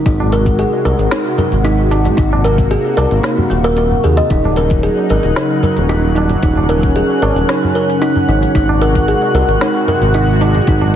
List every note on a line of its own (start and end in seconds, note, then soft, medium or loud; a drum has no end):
0.05 0.64 G#1 medium
0.05 4.26 C3 medium
0.05 2.16 G#3 medium
0.05 0.19 D#4 medium
0.05 4.26 F#4 medium
0.05 kick loud
0.05 open hi-hat medium
0.05 shaker soft
0.20 tabla na medium
0.20 tabla ge medium
0.32 0.46 A#4 medium
0.32 open hi-hat soft
0.32 shaker medium
0.46 kick loud
0.46 open hi-hat soft
0.46 shaker soft
0.59 0.84 G#4 medium
0.59 open hi-hat medium
0.59 shaker soft
0.73 tabla tin medium
0.85 0.94 C2 medium
0.85 0.99 A#4 medium
0.85 tabla tin medium
0.85 shaker medium
0.99 1.07 G#1 loud
0.99 open hi-hat soft
0.99 shaker soft
1.11 1.37 D#4 medium
1.11 snare medium
1.11 open hi-hat soft
1.11 shaker soft
1.38 1.51 A#4 medium
1.38 tabla ge medium
1.38 shaker medium
1.52 2.10 G#1 medium
1.52 open hi-hat soft
1.52 shaker soft
1.65 1.90 D#4 medium
1.65 open hi-hat soft
1.65 shaker soft
1.91 2.16 D#4 medium
1.91 tabla na medium
1.91 shaker medium
2.05 open hi-hat soft
2.05 tabla tin medium
2.05 tabla ge medium
2.05 shaker soft
2.17 2.76 G#1 medium
2.17 4.28 A#3 medium
2.17 2.31 D#4 medium
2.17 kick loud
2.17 open hi-hat medium
2.17 shaker soft
2.33 tabla na medium
2.33 tabla ge medium
2.44 2.58 A#4 medium
2.44 open hi-hat soft
2.44 shaker medium
2.58 kick loud
2.58 open hi-hat soft
2.58 shaker soft
2.71 2.96 G#4 medium
2.71 open hi-hat soft
2.71 shaker soft
2.85 tabla tin soft
2.97 3.06 C2 medium
2.97 3.11 A#4 medium
2.97 open hi-hat soft
2.97 tabla na medium
2.97 tabla tin medium
2.97 shaker medium
3.11 3.19 G#1 medium
3.11 open hi-hat soft
3.11 shaker soft
3.23 3.36 D#4 medium
3.23 snare medium
3.23 open hi-hat soft
3.23 shaker soft
3.38 tabla ge medium
3.50 3.96 D#1 medium
3.50 3.58 A#3 medium
3.50 shaker medium
3.64 3.76 A#4 loud
3.64 open hi-hat soft
3.64 shaker soft
3.77 3.91 A#4 medium
3.77 open hi-hat medium
3.77 shaker soft
3.91 tabla ge medium
4.04 4.21 D#2 medium
4.04 4.16 G#4 medium
4.04 shaker medium
4.17 4.25 D#5 medium
4.17 open hi-hat soft
4.17 shaker soft
4.30 4.89 D#1 medium
4.30 8.51 C#3 medium
4.30 8.51 F#3 medium
4.30 4.44 D#4 medium
4.30 6.41 D#4 medium
4.30 10.96 F#5 medium
4.30 kick loud
4.30 open hi-hat medium
4.30 shaker soft
4.44 tabla na medium
4.44 tabla ge medium
4.56 4.70 A#4 medium
4.56 open hi-hat soft
4.56 shaker medium
4.70 kick loud
4.70 open hi-hat soft
4.70 shaker soft
4.83 5.09 G#4 medium
4.83 open hi-hat medium
4.83 shaker soft
4.98 tabla tin medium
5.10 5.19 G#1 medium
5.10 5.23 A#4 medium
5.10 tabla tin medium
5.10 shaker medium
5.23 5.32 D#1 loud
5.23 open hi-hat soft
5.23 shaker soft
5.36 5.62 D#4 medium
5.36 snare medium
5.36 open hi-hat soft
5.36 shaker soft
5.63 5.76 A#4 medium
5.63 tabla ge medium
5.63 shaker medium
5.77 6.35 D#1 medium
5.77 open hi-hat soft
5.77 shaker soft
5.89 6.14 D#4 medium
5.89 open hi-hat soft
5.89 shaker soft
6.15 6.41 D#4 medium
6.15 tabla na soft
6.15 shaker medium
6.30 open hi-hat soft
6.30 tabla tin soft
6.30 tabla ge medium
6.30 shaker soft
6.43 7.01 D#1 medium
6.43 8.54 C#4 medium
6.43 6.56 D#4 medium
6.43 kick loud
6.43 open hi-hat medium
6.43 shaker soft
6.57 tabla na medium
6.57 tabla ge medium
6.69 6.83 A#4 medium
6.69 open hi-hat medium
6.69 shaker medium
6.83 kick loud
6.83 open hi-hat soft
6.83 shaker soft
6.96 7.21 G#4 medium
6.96 open hi-hat medium
6.96 shaker soft
7.09 tabla tin medium
7.22 7.31 G#1 medium
7.22 7.36 A#4 medium
7.22 tabla na medium
7.22 tabla tin medium
7.22 shaker medium
7.36 7.44 D#1 medium
7.36 open hi-hat soft
7.36 shaker soft
7.49 7.74 D#4 medium
7.49 snare medium
7.49 open hi-hat soft
7.49 shaker soft
7.64 tabla ge medium
7.75 7.89 A#4 medium
7.75 shaker medium
7.90 open hi-hat soft
7.90 shaker soft
8.02 8.27 D#4 loud
8.02 open hi-hat medium
8.02 shaker soft
8.16 tabla ge medium
8.28 8.45 G#1 medium
8.28 8.54 D#4 medium
8.28 shaker medium
8.43 open hi-hat soft
8.43 shaker soft
8.55 9.13 G#1 medium
8.55 10.96 C3 medium
8.55 10.96 G#3 medium
8.55 8.68 D#4 medium
8.55 10.96 F#4 medium
8.55 kick loud
8.55 open hi-hat medium
8.55 shaker soft
8.69 tabla na medium
8.69 tabla ge medium
8.82 8.95 A#4 medium
8.82 open hi-hat medium
8.82 shaker medium
8.95 kick loud
8.95 open hi-hat soft
8.95 shaker soft
9.08 9.34 G#4 medium
9.08 open hi-hat medium
9.08 shaker soft
9.23 tabla tin medium
9.34 9.43 C2 medium
9.34 9.48 A#4 medium
9.34 tabla tin medium
9.34 shaker medium
9.48 9.56 G#1 medium
9.48 open hi-hat soft
9.48 shaker soft
9.61 9.87 D#4 medium
9.61 snare medium
9.61 open hi-hat soft
9.61 shaker soft
9.88 10.01 A#4 medium
9.88 tabla ge medium
9.88 shaker medium
10.01 10.59 G#1 loud
10.01 open hi-hat soft
10.01 shaker soft
10.14 10.40 D#4 loud
10.14 open hi-hat medium
10.14 shaker soft
10.41 10.67 D#4 medium
10.41 tabla na medium
10.41 shaker medium
10.54 open hi-hat soft
10.54 tabla tin medium
10.54 tabla ge medium
10.54 shaker soft
10.67 10.96 G#1 medium
10.67 10.81 D#4 medium
10.67 kick loud
10.67 open hi-hat medium
10.67 shaker soft
10.81 tabla na medium
10.81 tabla ge medium